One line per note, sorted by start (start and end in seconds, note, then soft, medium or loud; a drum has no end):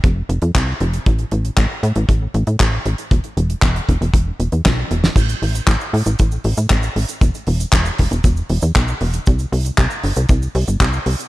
0.04 0.23 F1 medium
0.04 kick loud
0.04 closed hi-hat medium
0.29 0.39 F1 medium
0.29 closed hi-hat medium
0.42 0.51 F2 medium
0.42 closed hi-hat medium
0.55 0.74 C2 medium
0.55 kick loud
0.55 clap loud
0.55 closed hi-hat medium
0.80 0.99 F1 medium
0.80 closed hi-hat medium
0.93 closed hi-hat medium
1.06 1.25 A1 medium
1.06 kick loud
1.06 closed hi-hat medium
1.19 closed hi-hat soft
1.31 1.51 A1 medium
1.31 closed hi-hat medium
1.45 closed hi-hat medium
1.57 1.67 A1 medium
1.57 kick loud
1.57 clap loud
1.57 closed hi-hat medium
1.83 1.92 A2 loud
1.83 closed hi-hat medium
1.96 2.05 A1 medium
1.96 closed hi-hat medium
2.09 2.28 A1 medium
2.09 kick loud
2.09 closed hi-hat medium
2.34 2.44 A1 loud
2.34 closed hi-hat medium
2.47 2.57 A2 medium
2.47 closed hi-hat medium
2.60 2.79 A1 medium
2.60 kick loud
2.60 clap loud
2.60 closed hi-hat medium
2.86 2.95 A1 medium
2.86 closed hi-hat medium
2.98 closed hi-hat medium
3.11 3.21 E1 medium
3.11 kick loud
3.11 closed hi-hat medium
3.24 closed hi-hat medium
3.37 3.56 E1 medium
3.37 closed hi-hat medium
3.50 closed hi-hat medium
3.62 3.81 E1 medium
3.62 kick loud
3.62 clap loud
3.62 closed hi-hat medium
3.76 closed hi-hat medium
3.89 3.98 E1 medium
3.89 kick medium
3.89 closed hi-hat medium
4.01 4.11 E1 medium
4.01 closed hi-hat medium
4.14 4.33 E1 medium
4.14 kick loud
4.14 closed hi-hat medium
4.40 4.49 E1 medium
4.40 closed hi-hat medium
4.52 4.62 E2 medium
4.52 closed hi-hat medium
4.66 4.84 B1 loud
4.66 kick loud
4.66 snare loud
4.66 clap loud
4.66 closed hi-hat medium
4.91 5.10 E1 medium
4.91 closed hi-hat medium
5.04 snare medium
5.04 closed hi-hat medium
5.16 5.35 A1 loud
5.16 kick loud
5.16 closed hi-hat loud
5.16 crash loud
5.16 cabasa medium
5.29 closed hi-hat medium
5.29 cabasa soft
5.42 5.61 A1 medium
5.42 open hi-hat loud
5.55 closed hi-hat medium
5.55 cabasa medium
5.67 5.77 A1 medium
5.67 kick loud
5.67 clap loud
5.67 closed hi-hat medium
5.67 cabasa medium
5.81 cabasa soft
5.93 6.03 A2 loud
5.93 open hi-hat loud
6.06 6.16 A1 medium
6.06 closed hi-hat medium
6.06 cabasa medium
6.19 6.38 A1 loud
6.19 kick loud
6.19 closed hi-hat loud
6.19 cabasa medium
6.32 cabasa soft
6.44 6.54 A1 loud
6.44 open hi-hat loud
6.57 6.67 A2 medium
6.57 closed hi-hat medium
6.57 cabasa medium
6.70 6.89 A1 medium
6.70 kick loud
6.70 clap loud
6.70 closed hi-hat medium
6.70 cabasa medium
6.83 cabasa soft
6.96 7.05 A1 medium
6.96 open hi-hat loud
7.09 closed hi-hat medium
7.09 cabasa medium
7.21 7.31 E1 medium
7.21 kick loud
7.21 closed hi-hat medium
7.21 cabasa medium
7.35 closed hi-hat medium
7.35 cabasa soft
7.47 7.66 E1 medium
7.47 open hi-hat loud
7.60 closed hi-hat medium
7.60 cabasa medium
7.73 7.92 E1 medium
7.73 kick loud
7.73 clap loud
7.73 closed hi-hat medium
7.73 cabasa medium
7.85 cabasa soft
7.98 8.08 E1 medium
7.98 kick medium
7.98 open hi-hat loud
8.11 8.21 E1 medium
8.11 closed hi-hat medium
8.11 cabasa medium
8.24 8.43 E1 medium
8.24 kick loud
8.24 closed hi-hat loud
8.24 cabasa medium
8.37 cabasa soft
8.49 8.59 E1 medium
8.49 open hi-hat loud
8.62 8.72 E2 medium
8.62 closed hi-hat medium
8.62 cabasa medium
8.75 8.94 B1 medium
8.75 kick loud
8.75 clap loud
8.75 closed hi-hat loud
8.75 cabasa medium
8.88 cabasa soft
9.01 9.20 E1 medium
9.01 open hi-hat loud
9.13 closed hi-hat medium
9.13 cabasa medium
9.26 9.46 C2 loud
9.26 kick loud
9.26 closed hi-hat medium
9.26 cabasa medium
9.39 closed hi-hat medium
9.39 cabasa soft
9.52 9.71 C2 medium
9.52 open hi-hat loud
9.65 closed hi-hat medium
9.65 cabasa medium
9.78 9.88 C2 medium
9.78 kick loud
9.78 clap loud
9.78 closed hi-hat medium
9.78 cabasa medium
9.90 cabasa soft
10.03 10.13 G1 loud
10.03 open hi-hat loud
10.16 10.26 C2 medium
10.16 closed hi-hat medium
10.16 cabasa medium
10.29 10.48 C2 loud
10.29 kick loud
10.29 closed hi-hat medium
10.29 cabasa medium
10.42 cabasa medium
10.55 10.64 C2 loud
10.55 open hi-hat loud
10.67 10.77 G1 medium
10.67 closed hi-hat medium
10.67 cabasa medium
10.80 10.99 C2 medium
10.80 kick loud
10.80 clap loud
10.80 closed hi-hat medium
10.80 cabasa medium
10.93 cabasa medium
11.06 11.16 C2 medium
11.06 open hi-hat loud
11.19 closed hi-hat medium
11.19 cabasa medium